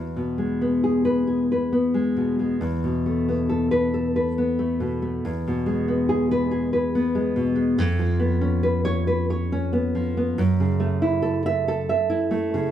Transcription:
nylon-string guitar
Already playing: E2
0.16 B2
0.38 G#3
0.61 B3
0.84 G#4
1.05 B4
1.27 G#4
1.52 B4
1.73 B3
1.94 G#3
2.17 B2
2.39 G#3
2.61 E2
2.84 B2
3.06 A3
3.29 B3
3.49 A4
3.71 B4
3.94 A4
4.16 B4
4.38 B3
4.59 A3
4.80 B2
5.02 A3
5.25 E2
5.48 B2
5.66 G#3
5.88 B3
6.09 G#4
6.31 B4
6.51 G#4
6.73 B4
6.95 B3
7.15 G#3
7.36 B2
7.56 G#3
7.78 F2
7.99 F3
8.19 B3
8.41 C#4
8.63 B4
8.85 C#5
9.07 B4
9.30 C#5
9.52 C#4
9.73 B3
9.95 F3
10.17 B3
10.38 F#2
10.60 C#3
10.80 A3
11.02 E4
11.22 A4
11.46 E5
11.68 A4
11.89 E5
12.10 E4
12.31 A3
12.54 C#3

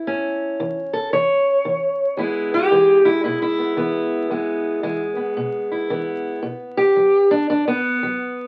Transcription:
steel-string acoustic guitar
Already playing: E4
0.07 A2 C#4
0.60 E3
0.93 A4
1.13 E3 C#5
1.65 E3
2.17 E2 G#3 B3 E4
2.54 G4
2.72 E3 G#3
3.05 G#3 E4
3.24 B2 E4
3.42 E4
3.59 B3
3.77 E3 B3
4.30 E2 G#3 B3
4.83 E3 G#3
5.16 B3
5.37 B2
5.71 E4
5.90 E3 B3
6.43 B2
6.77 G4
6.96 F#3
7.31 D4
7.50 F#2 D4
7.68 B3
8.03 F#3

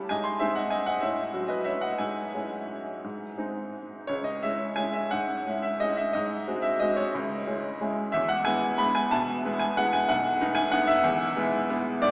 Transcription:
upright piano
Already playing: A2 G3 C#4 G4 C#5 A5
0.09 G#2 D#5 G#5
0.24 G#5 C6
0.39 G#3 C4 D#4 C5 E5
0.55 D#5 F#5
0.70 D#5 G#5
0.86 D#5 F#5
1.01 A2 C#5 E5
1.34 F#3 C#4 F#4
1.48 B4 D#5
1.64 C#5 E5
1.81 D#5 F#5
1.98 G#2 E5 G#5
2.35 G#3 C#4 E4
3.04 G#2
3.38 G#3 C4 D#4
4.07 C#2 C#5
4.24 D#5
4.43 G#3 C#4 E4 E5
4.76 G#3 C#4 E4 G#5
4.93 E5
5.11 G#2 F#5
5.46 G#3 C#4 E4
5.62 E5
5.80 G#3 C#4 E4 D#5
5.97 E5
6.13 G#2 D#5
6.48 G#3 C4 F#4
6.62 E5
6.80 G#3 C4 F#4 D#5
6.96 C#5
7.15 C#2
7.47 G#3 C#4 E4
7.81 G#3 C#4 E4
8.12 E2 E5
8.29 F#5
8.45 G#3 B3 E4 G#5
8.78 G#3 B3 E4 B5
8.95 G#5
9.11 B2 A5
9.45 G#3 B3 E4
9.59 G#5
9.77 G#3 B3 E4 F#5
9.93 G#5
10.09 B1 F#5
10.40 A3 B3 D#4
10.55 G#5
10.71 A3 B3 D#4 F#5
10.87 E5
11.04 E2
11.37 G#3 B3 E4
11.70 G#3 B3 E4
12.02 G#2 D5

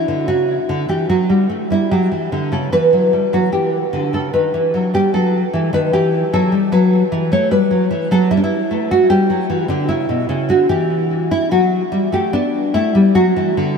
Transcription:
nylon-string guitar
Already playing: E4
0.08 D3
0.28 C#3 F#4
0.69 D3
0.89 E3 G4
1.09 F#3 F#4
1.30 G3
1.49 A3
1.70 G3 E4
1.91 F#3 G4
2.12 E3
2.32 D3
2.52 C#3 A4
2.72 E3 E4 B4
2.93 F#3
3.13 G3
3.33 F#3 F#4
3.52 E3 G4
3.93 D3
4.13 C#3 A4
4.33 D#3 B4
4.54 E3
4.74 F#3
4.94 G3 G4
5.14 F#3 A4
5.53 E3
5.73 D#3 B4
5.93 E3 E4 G4
6.33 F#3 A4
6.52 G3
6.72 F#3 B4
7.12 E3
7.32 A3 C#5
7.51 G3 B4
7.71 F#3
7.91 E3
8.11 F#3 A4
8.31 G3 E4
8.37 D4
8.44 E4
8.71 A3
8.91 F#4
9.10 G3 G4
9.30 F#3
9.50 E3
9.68 D3 D4
9.89 C#3 E4
10.09 B2
10.29 C#3
10.49 D3 F#4
10.69 E3 G4
11.31 E4
11.51 F#3 F#4
11.92 G3
12.12 A3 G4
12.33 B3 D4
12.74 A3 E4
12.95 G3
13.15 F#3 F#4
13.36 E3
13.57 D3

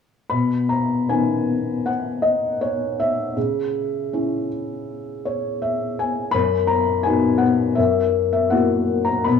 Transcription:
felt piano
0.29 B2 B5
0.69 A#5
1.09 D#3 B3 C#4 G#5
1.86 F#5
2.22 D#5
2.62 C#5
3.00 E5
3.37 C#3
4.13 C#4 E4
5.25 C#5
5.62 E5
5.99 G#5
6.31 F#2 B5
6.67 A#5
7.03 B3 D#4 F#4 G#5
7.38 F#5
7.75 F#2 E5
8.33 E5
8.50 A#3 E4 F#4 F#5
9.05 A#5
9.24 B2 B5

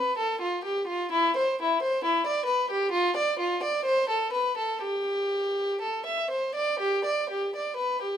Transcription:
violin
Already playing: B4
0.18 A4
0.41 F4
0.64 G4
0.87 F4
1.12 E4
1.37 C5
1.62 E4
1.82 C5
2.04 E4
2.27 D5
2.46 B4
2.71 G4
2.92 F4
3.17 D5
3.39 F4
3.63 D5
3.85 C5
4.09 A4
4.33 B4
4.57 A4
4.82 G4
5.81 A4
6.06 E5
6.31 C5
6.55 D5
6.80 G4
7.05 D5
7.30 G4
7.56 D5
7.77 B4
8.02 G4

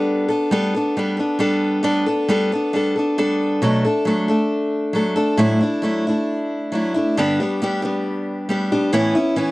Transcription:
steel-string acoustic guitar
Already playing: G3 B3 D4 A4
0.28 B3 D4 A4
0.51 G3 B3 D4 A4
0.75 B3 D4 A4
0.97 G3 B3 D4 A4
1.17 B3 D4 A4
1.39 G3 B3 D4 A4
1.83 G3 B3 D4 A4
2.06 B3 D4 A4
2.28 G3 B3 D4 A4
2.52 B3 D4 A4
2.73 G3 B3 D4 A4
2.96 B3 D4 A4
3.18 G3 B3 D4 A4
3.62 B2 F#3 A3 D4 A4
3.85 A3 D4 A4
4.05 F#3 A3 D4 A4
4.28 A3 D4 A4
4.93 F#3 A3 D4 A4
5.16 A3 D4 A4
5.37 A2 F#3 A3 D4 E4
5.61 A3 D4 E4
5.82 F#3 A3 D4 E4
6.07 A3 D4 E4
6.72 F#3 A3 D4 E4
6.94 A3 D4 E4
7.17 G2 D3 G3 B3 D4 G4
7.40 G3 B3 D4 G4
7.62 G3 B3 D4 G4
7.82 G3 B3 D4 G4
8.49 G3 B3 D4 G4
8.72 G3 B3 D4 G4
8.93 A2 E3 B3 C#4 E4
9.15 B3 C#4 E4
9.36 E3 B3 C#4 E4

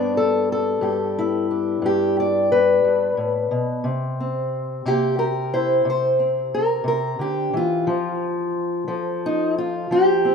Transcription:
steel-string acoustic guitar
Already playing: G2 B3 D4 D5
0.17 A4
0.52 A4
0.81 G2 G4
1.19 E4
1.51 D4
1.82 G2 G4
2.20 D5
2.52 B4
2.84 G2
3.17 A2
3.51 B2
3.84 C3
4.20 C4
4.86 C3 A#3 G4
5.19 G4 A#4
5.54 E4 C5
5.85 C3
5.90 C5
6.19 C4
6.54 A#4
6.84 C3 A#4
7.19 D3 G4
7.54 E3 F4
7.87 F3
8.88 F3 A4
9.26 D#4
9.58 F4
9.91 F3 G4
10.25 C4

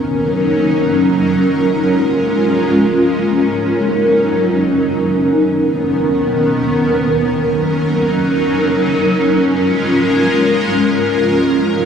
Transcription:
ambient pad
Already playing: F#3 C#4 D#4 A#4
1.11 G#3 C#4 F4
3.06 F#3 D#4
5.01 D#3 B3 C#4 A#4
6.96 F#3 D#4
8.91 G#3 F4 A#4
10.86 F#3 D#4

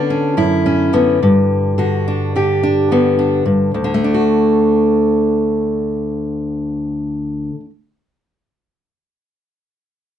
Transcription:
steel-string acoustic guitar
Already playing: D3 B3 D4
0.10 C#4
0.37 F#2 E4
0.66 C#4
0.93 D3 B3
1.23 G2
1.78 D3 F#4
2.08 D4
2.36 D3 G4
2.63 D4
2.92 D3 B3
3.19 D4
3.46 G2
3.74 D2
3.84 D3
3.94 A3
4.04 D4
4.14 F#4

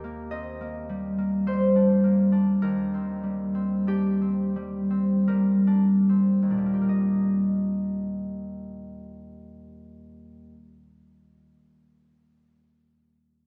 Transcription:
harp
Already playing: D#2 G4 A#4
0.04 A#3
0.31 C4 D#5
0.61 A#3
0.89 G3
1.18 A#3
1.47 G3 C5
1.76 D4
2.04 A#3
2.32 D4
2.62 D#2 A#4
2.94 C4
3.23 G3
3.55 C4
3.87 D4 G4
4.21 C4
4.56 G3
4.90 C4
5.28 G3 A#4
5.67 D4
6.09 C4
6.42 D#2
6.50 A#2 D4
6.58 G3
6.66 A#3
6.73 G4
6.81 A#4
6.89 D#5

